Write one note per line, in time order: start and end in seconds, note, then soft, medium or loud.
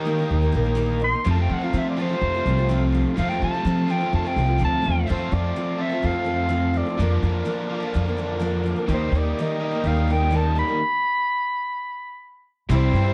0.00 0.22 D#3 medium
0.00 1.00 D#3 medium
0.00 1.01 A#3 medium
0.00 1.01 D#4 medium
0.00 1.02 G4 medium
0.00 1.23 A#4 medium
0.00 1.22 D#5 medium
0.00 1.22 G5 medium
0.00 1.21 D#6 medium
0.05 0.18 G3 medium
0.05 0.19 A#3 medium
0.05 0.19 D#4 medium
0.05 0.17 A#4 medium
0.19 0.43 A#3 medium
0.19 0.41 D#4 medium
0.19 0.41 A#4 medium
0.31 0.50 D#2 medium
0.42 0.51 A#3 medium
0.42 0.53 D#4 medium
0.42 0.54 A#4 medium
0.52 1.12 A#1 medium
0.52 0.65 G3 medium
0.52 0.65 A#3 medium
0.52 0.64 D#4 medium
0.52 0.63 A#4 medium
0.64 0.75 A#3 medium
0.64 0.76 D#4 medium
0.64 0.76 A#4 medium
0.75 1.01 D#3 medium
0.75 0.98 G3 medium
0.75 0.99 A#3 medium
0.75 1.00 D#4 loud
0.75 1.01 A#4 loud
0.99 1.13 G3 medium
0.99 1.13 A#3 medium
0.99 1.12 D#4 medium
0.99 1.11 A#4 medium
1.04 1.26 C6 loud
1.12 1.24 A#3 soft
1.12 1.26 D#4 soft
1.12 1.25 A#4 medium
1.25 1.99 F2 medium
1.25 1.46 F2 loud
1.25 1.96 C3 medium
1.25 1.37 F3 medium
1.25 1.98 F3 medium
1.25 1.97 A3 medium
1.25 1.37 C4 medium
1.25 1.97 C4 loud
1.25 1.35 F4 medium
1.25 1.96 F4 loud
1.25 5.03 A4 medium
1.25 1.34 A4 medium
1.25 5.03 C5 medium
1.25 5.04 F5 medium
1.25 5.04 C6 medium
1.31 1.40 A5 loud
1.35 1.62 C4 soft
1.35 1.61 F4 soft
1.35 1.60 A4 medium
1.41 1.55 G5 medium
1.50 1.69 F3 medium
1.50 1.65 F#5 medium
1.61 1.73 C4 soft
1.61 1.73 F4 soft
1.61 1.73 A4 soft
1.61 1.79 F5 medium
1.73 1.96 F3 medium
1.73 2.12 F3 medium
1.73 1.97 C4 medium
1.73 1.98 F4 medium
1.73 1.98 A4 medium
1.77 1.87 E5 medium
1.90 1.99 D5 medium
1.97 3.14 F2 medium
1.97 3.14 C3 medium
1.97 2.09 F3 medium
1.97 3.15 F3 medium
1.97 3.17 A3 medium
1.97 3.17 C4 medium
1.97 2.10 C4 medium
1.97 3.17 F4 medium
1.97 2.10 F4 medium
1.97 2.08 A4 medium
2.02 2.92 C5 loud
2.09 2.35 C4 soft
2.09 2.34 F4 soft
2.09 2.33 A4 medium
2.22 2.41 F2 loud
2.34 2.46 C4 soft
2.34 2.46 F4 medium
2.34 2.46 A4 medium
2.46 3.03 C2 medium
2.46 2.58 F3 medium
2.46 2.58 C4 medium
2.46 2.58 F4 medium
2.46 2.57 A4 medium
2.58 2.68 C4 soft
2.58 2.69 F4 medium
2.58 2.70 A4 medium
2.69 2.91 F3 medium
2.69 2.93 C4 medium
2.69 2.93 F4 medium
2.69 2.94 A4 loud
2.92 3.16 F3 medium
2.92 3.17 C4 medium
2.92 3.18 F4 medium
2.92 3.17 A4 medium
3.14 3.86 F2 medium
3.14 3.37 F2 loud
3.14 3.86 C3 medium
3.14 3.87 F3 medium
3.14 3.29 F3 medium
3.14 3.87 A3 medium
3.14 3.86 C4 medium
3.14 3.29 C4 medium
3.14 3.85 F4 loud
3.14 3.29 A4 medium
3.18 3.30 F4 medium
3.18 3.31 F5 loud
3.29 3.54 C4 soft
3.29 3.54 F4 medium
3.29 3.53 A4 medium
3.29 3.40 G5 medium
3.42 3.61 F3 medium
3.42 3.92 A5 loud
3.54 3.65 C4 soft
3.54 3.66 F4 soft
3.54 3.65 A4 medium
3.65 3.87 F3 medium
3.65 4.03 F3 loud
3.65 3.88 C4 medium
3.65 3.89 F4 medium
3.65 3.90 A4 medium
3.87 5.07 F2 medium
3.87 5.06 C3 medium
3.87 4.00 F3 medium
3.87 5.05 F3 medium
3.87 5.06 A3 medium
3.87 5.06 C4 medium
3.87 4.01 C4 medium
3.87 5.06 F4 medium
3.87 4.00 F4 medium
3.91 3.99 A4 medium
3.91 4.13 G5 medium
4.00 4.25 C4 soft
4.00 4.25 F4 medium
4.00 4.23 A4 medium
4.13 4.32 F2 medium
4.13 4.29 A5 medium
4.24 4.37 C4 soft
4.24 4.37 F4 medium
4.24 4.36 A4 medium
4.24 4.61 G5 loud
4.36 4.58 C2 medium
4.36 4.49 F3 medium
4.36 4.49 C4 medium
4.36 4.48 F4 medium
4.36 4.47 A4 medium
4.48 4.58 C4 soft
4.48 4.59 F4 soft
4.48 4.60 A4 medium
4.58 4.82 D2 medium
4.58 4.81 F3 medium
4.58 4.82 C4 medium
4.58 4.83 F4 medium
4.58 4.84 A4 medium
4.65 5.09 A5 loud
4.82 5.06 F3 medium
4.82 5.08 C4 medium
4.82 5.08 F4 medium
4.82 5.08 A4 medium
4.86 5.07 E2 medium
5.06 5.28 F2 loud
5.06 5.81 F3 medium
5.06 5.30 F3 medium
5.06 5.78 A3 medium
5.06 5.78 C4 medium
5.06 5.32 C4 medium
5.06 5.79 F4 medium
5.06 5.32 F4 medium
5.06 6.97 A4 medium
5.06 5.33 A4 medium
5.06 5.77 A4 medium
5.06 6.98 C5 medium
5.06 8.87 F5 medium
5.06 6.97 C6 medium
5.11 5.34 C5 medium
5.31 5.51 F2 loud
5.31 5.55 F3 medium
5.31 5.55 C4 medium
5.31 5.56 F4 medium
5.31 5.57 A4 medium
5.31 5.83 D5 loud
5.56 5.92 F3 medium
5.56 5.91 C4 medium
5.56 5.89 F4 medium
5.56 5.88 A4 medium
5.78 6.96 F3 medium
5.78 6.97 A3 medium
5.78 6.98 C4 medium
5.78 6.97 F4 medium
5.78 6.97 A4 medium
5.78 6.07 E5 medium
5.89 6.02 C4 soft
5.89 6.03 F4 soft
5.89 6.02 A4 medium
6.02 6.80 F2 medium
6.02 6.15 F3 medium
6.02 6.14 C4 medium
6.02 6.12 F4 medium
6.02 6.10 A4 medium
6.02 6.79 F5 loud
6.11 6.25 F4 soft
6.11 6.25 A4 medium
6.15 6.25 C4 soft
6.24 6.48 F3 medium
6.24 6.48 C4 medium
6.24 6.49 F4 medium
6.24 6.49 A4 medium
6.49 6.73 F3 medium
6.49 6.73 C4 medium
6.49 6.74 F4 medium
6.49 6.75 A4 medium
6.74 6.86 F3 medium
6.74 6.86 C4 medium
6.74 6.87 F4 medium
6.74 6.85 A4 medium
6.74 7.24 D5 medium
6.86 7.00 C4 soft
6.86 6.99 F4 soft
6.86 6.99 A4 medium
6.97 7.18 F2 loud
6.97 7.69 D3 medium
6.97 7.68 F3 medium
6.97 7.22 F3 medium
6.97 7.22 A#3 medium
6.97 7.69 D4 medium
6.97 7.23 D4 medium
6.97 7.69 F4 medium
6.97 10.76 A#4 medium
6.97 7.69 A#4 medium
6.97 8.87 D5 medium
6.97 8.87 D6 medium
7.02 7.24 A#4 medium
7.23 7.42 F2 loud
7.23 7.44 F3 medium
7.23 7.44 A#3 medium
7.23 7.45 D4 medium
7.23 7.46 A#4 medium
7.45 7.82 F3 medium
7.45 7.82 A#3 medium
7.45 7.81 D4 medium
7.45 7.79 A#4 medium
7.69 8.88 D3 medium
7.69 8.86 F3 medium
7.69 8.88 D4 medium
7.69 8.88 F4 medium
7.69 8.88 A#4 medium
7.80 7.93 A#3 soft
7.80 7.94 D4 medium
7.80 7.93 A#4 medium
7.94 8.72 F2 medium
7.94 8.06 F3 medium
7.94 8.06 A#3 medium
7.94 8.06 D4 medium
7.94 8.05 A#4 medium
8.06 8.17 A#3 medium
8.06 8.17 D4 medium
8.06 8.18 A#4 medium
8.17 8.38 F3 medium
8.17 8.39 A#3 medium
8.17 8.40 D4 medium
8.17 8.41 A#4 medium
8.40 8.62 F3 medium
8.40 8.64 A#3 medium
8.40 8.65 D4 medium
8.40 8.66 A#4 medium
8.64 8.77 F3 medium
8.64 8.78 A#3 medium
8.64 8.76 D4 medium
8.64 8.75 A#4 medium
8.76 8.88 A#3 soft
8.76 8.90 D4 soft
8.76 8.89 A#4 medium
8.87 9.08 D#2 loud
8.87 9.58 D#3 medium
8.87 9.13 D#3 medium
8.87 9.59 G3 medium
8.87 9.12 G3 medium
8.87 9.59 A#3 medium
8.87 9.13 A#3 medium
8.87 9.13 D#4 medium
8.87 9.60 G4 medium
8.87 9.59 A#4 medium
8.87 9.14 A#4 medium
8.87 10.77 D#5 medium
8.87 10.78 G5 medium
8.87 10.77 D#6 medium
8.93 9.19 C5 medium
9.12 9.32 D#2 loud
9.12 9.37 G3 medium
9.12 9.38 A#3 medium
9.12 9.38 D#4 medium
9.12 9.39 A#4 medium
9.17 9.43 D5 medium
9.39 9.74 D#3 medium
9.39 9.74 G3 medium
9.39 9.73 A#3 medium
9.39 9.72 D#4 medium
9.39 9.71 A#4 medium
9.39 9.63 D#5 medium
9.60 10.79 D#3 medium
9.60 10.79 G3 medium
9.60 10.79 A#3 medium
9.60 10.79 G4 medium
9.60 10.78 A#4 medium
9.64 9.88 D#5 medium
9.72 9.83 A#3 soft
9.72 9.85 D#4 medium
9.72 9.84 A#4 soft
9.84 10.61 D#2 loud
9.84 9.96 G3 medium
9.84 9.96 A#3 medium
9.84 9.97 D#4 medium
9.84 9.95 A#4 medium
9.84 10.13 F5 medium
9.96 10.09 A#3 soft
9.96 10.09 D#4 medium
9.96 10.09 A#4 medium
10.08 10.31 G3 medium
10.08 10.31 A#3 medium
10.08 10.31 D#4 medium
10.08 10.32 A#4 medium
10.08 10.37 G5 loud
10.31 10.55 D#3 medium
10.31 10.54 G3 medium
10.31 10.55 A#3 medium
10.31 10.56 D#4 medium
10.31 10.57 A#4 medium
10.36 10.58 A5 loud
10.55 10.68 G3 medium
10.55 10.68 A#3 medium
10.55 10.68 D#4 medium
10.55 10.67 A#4 medium
10.55 12.44 B5 loud
10.68 10.82 A#3 soft
10.68 10.80 D#4 soft
10.68 10.80 A#4 medium
12.69 12.89 C2 loud
12.69 13.14 C3 medium
12.69 12.94 C3 medium
12.69 13.14 E3 medium
12.69 12.92 G3 medium
12.69 12.95 G3 loud
12.69 12.95 C4 medium
12.69 12.94 E4 medium
12.69 12.93 E4 loud
12.69 13.14 G4 medium
12.69 12.95 G4 loud
12.69 13.14 C5 medium
12.69 13.14 E5 medium
12.69 13.14 C6 medium
12.75 13.14 C5 loud
12.93 13.14 G2 medium
12.93 13.06 G3 medium
12.93 13.14 G3 medium
12.93 13.14 C4 medium
12.93 13.06 C4 medium
12.93 13.14 E4 medium
12.93 13.05 E4 medium
12.93 13.04 G4 medium
13.05 13.14 C4 soft
13.05 13.14 E4 soft
13.05 13.14 G4 medium